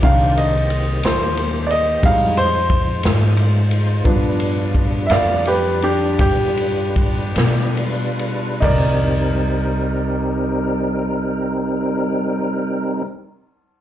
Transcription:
<<
  \new Staff \with { instrumentName = "Grand piano" } { \time 12/8 \key c \minor \tempo 4. = 53 <ees bes d' f''>8 ees''4 c''4 <d'' ees''>8 <g aes ees' f''>8 c''4 r4. | <f b d'>4. <d'' e'' f''>8 <g' b'>8 <d' g'>8 g'2 r4 | <ees' bes' d''>1. | }
  \new Staff \with { instrumentName = "Tonewheel organ" } { \time 12/8 \key c \minor <ees bes g' c''>2. <e fis' des''>8 <aes ees' f' c''>2~ <aes ees' f' c''>8 | <g d' f' b'>1. | <g c' ees' bes'>1. | }
  \new Staff \with { instrumentName = "Upright bass" } { \clef bass \time 12/8 \key c \minor c,4. ees,4. f,4. aes,4. | g,4. f,4. g,4. b,4. | c,1. | }
  \new DrumStaff \with { instrumentName = "Drums" } \drummode { \time 12/8 <bd cymr>8 cymr8 cymr8 <cymr sn>8 cymr8 cymr8 <bd cymr>8 cymr8 <bd cymr>8 <cymr sn>8 cymr8 cymr8 | <bd cymr>8 cymr8 <bd cymr>8 <cymr sn>8 cymr8 cymr8 <bd cymr>8 cymr8 <bd cymr>8 <cymr sn>8 cymr8 cymr8 | <cymc bd tomfh>4. r4. r4. r4. | }
>>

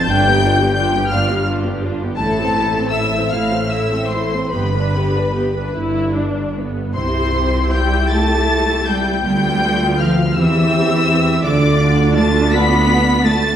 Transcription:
<<
  \new Staff \with { instrumentName = "Violin section" } { \time 6/8 \key c \major \tempo 4. = 54 g'''4 g'''8 f'''8 r4 | a''4 e'''8 f'''8 e'''8 c'''8 | b''4. r4. | c'''4 g'''8 a'''4 g'''8 |
g'''4 f'''8 e'''4. | d'''4 a'''8 b'''4 a'''8 | }
  \new Staff \with { instrumentName = "Violin section" } { \time 6/8 \key c \major g''4 g''8 f''8 r4 | a'4 e''8 f''8 e''8 c''8 | b'4. r4. | c''4 g''8 a''4 g''8 |
g''4 f''8 e''4. | d''4 a''8 b''4 a''8 | }
  \new Staff \with { instrumentName = "Viola section" } { \time 6/8 \key c \major <d' f'>16 <b g'>16 <d' f'>16 <b g'>16 <d' f'>16 <b g'>16 <d' f'>16 <b g'>16 <d' f'>16 <b g'>16 <d' f'>16 <b g'>16 | <a e'>16 <c' a'>16 <a e'>16 <c' a'>16 <a e'>16 <c' a'>16 <a e'>16 <c' a'>16 <a e'>16 <c' a'>16 <a e'>16 <c' a'>16 | <b g'>16 <d' b'>16 <b g'>16 <d' b'>16 <b g'>16 <d' b'>16 e'8 d'8 b8 | <e' g'>2. |
<b f'>4. <c' g'>4. | <d' f'>2. | }
  \new Staff \with { instrumentName = "Cello section" } { \clef bass \time 6/8 \key c \major g,4. g,4. | a,4. a,4. | g,4. g,4. | c4 g8 a4 g8 |
g4 f8 e4. | d4 a8 b4 a8 | }
  \new Staff \with { instrumentName = "Double bass section" } { \clef bass \time 6/8 \key c \major g,,4. g,,4. | a,,4. a,,4. | g,,4. g,,4. | c,2. |
d,4. e,4. | d,2. | }
>>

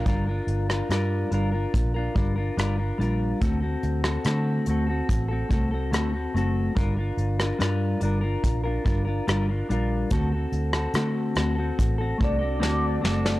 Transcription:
<<
  \new Staff \with { instrumentName = "Soft synth lead" } { \time 4/4 \key g \minor \tempo 4 = 72 r1 | r1 | r1 | r2 r8 d''4. | }
  \new Staff \with { instrumentName = "Clean electric guitar" } { \time 4/4 \key g \minor <g d' f' bes'>16 <d' f' bes'>8 <d' f' bes'>16 <g d' f' bes'>8 <g d' f' bes'>16 <d' f' bes'>8 <d' f' bes'>16 <g d' f' bes'>16 <d' f' bes'>16 <g d' f' bes'>16 <d' f' bes'>16 <g d' f' bes'>8 | <d a c' fis' a'>16 <c' fis' a'>8 <c' fis' a'>16 <d a c' fis' a'>8 <a c' fis' a'>16 <c' fis' a'>8 <c' fis' a'>16 <a c' fis' a'>16 <c' fis' a'>16 <d a c' fis' a'>16 <c' fis' a'>16 <a c' fis' a'>8 | <g d' f' bes'>16 <d' f' bes'>8 <d' f' bes'>16 <g d' f' bes'>8 <g d' f' bes'>16 <d' f' bes'>8 <d' f' bes'>16 <g d' f' bes'>16 <d' f' bes'>16 <g d' f' bes'>16 <d' f' bes'>16 <g d' f' bes'>8 | <d a c' fis' a'>16 <c' fis' a'>8 <c' fis' a'>16 <d a c' fis' a'>8 <a c' fis' a'>16 <c' fis' a'>8 <c' fis' a'>16 <a c' fis' a'>16 <c' fis' a'>16 <d a c' fis' a'>8 <a c' fis' a'>8 | }
  \new Staff \with { instrumentName = "Fingered electric bass" } { \clef bass \time 4/4 \key g \minor g,,8 g,,8 g,8 g,,8 bes,,8 g,,8 g,,8 bes,,8 | d,8 d,8 d8 d,8 a,,8 c,8 d,8 fis,,8 | g,,8 g,,8 g,8 g,,8 bes,,8 g,,8 g,,8 bes,,8 | d,8 d,8 d8 d,8 a,,8 c,8 d,8 fis,,8 | }
  \new DrumStaff \with { instrumentName = "Drums" } \drummode { \time 4/4 <hh bd>8 hh16 ss16 <hh ss>8 hh8 <hh bd>8 <hh bd>8 <hh ss>8 hh8 | <hh bd>8 hh16 ss16 <hh ss>8 hh8 <hh bd>8 <hh bd>8 <hh ss>8 hh8 | <hh bd>8 hh16 ss16 <hh ss>8 hh8 <hh bd>8 <hh bd>8 <hh ss>8 hh8 | <hh bd>8 hh16 ss16 <hh ss>8 <hh ss>8 <hh bd>8 <hh bd>8 sn8 sn16 sn16 | }
>>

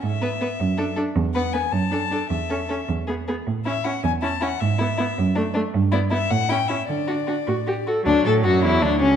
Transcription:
<<
  \new Staff \with { instrumentName = "Violin" } { \time 6/8 \key a \major \tempo 4. = 105 e''2~ e''8 r8 | r8 fis''8 gis''8 a''4. | e''4. r4. | r8 e''8 fis''8 gis''8 a''8 fis''8 |
e''2~ e''8 r8 | \key d \major r8 d''8 e''8 fis''8 g''8 e''8 | d''2~ d''8 r8 | d'8 a'8 fis'8 e'8 d'8 cis'8 | }
  \new Staff \with { instrumentName = "Violin" } { \time 6/8 \key a \major r8 b'8 b'8 r8 a'8 a'8 | r8 b'8 b'8 r8 a'8 a'8 | r8 a'8 a'8 r8 gis'8 gis'8 | r8 e'8 e'8 r8 e'8 e'8 |
r8 e'8 e'8 r8 d'8 d'8 | \key d \major r8 e'8 e'8 r8 e'8 e'8 | r8 fis'8 fis'8 r8 fis'8 fis'8 | d'8 a'8 fis'8 e'8 d'8 cis'8 | }
  \new Staff \with { instrumentName = "Viola" } { \time 6/8 \key a \major r8 b8 b8 r8 d'8 d'8 | r8 b8 b8 r8 d'8 d'8 | r8 cis'8 cis'8 r8 b8 b8 | r8 cis'8 cis'8 r8 cis'8 cis'8 |
r8 b8 b8 r8 a8 a8 | \key d \major r8 b8 b8 r8 cis'8 cis'8 | r8 d'8 d'8 fis'8 g'8 a'8 | fis2. | }
  \new Staff \with { instrumentName = "Cello" } { \clef bass \time 6/8 \key a \major gis,4. fis,4. | e,4. fis,4. | e,4. e,4. | a,4. e,4. |
gis,4. fis,4. | \key d \major g,4. a,4. | d4. a,4. | d,8 a,8 fis,8 e,8 d,8 cis,8 | }
>>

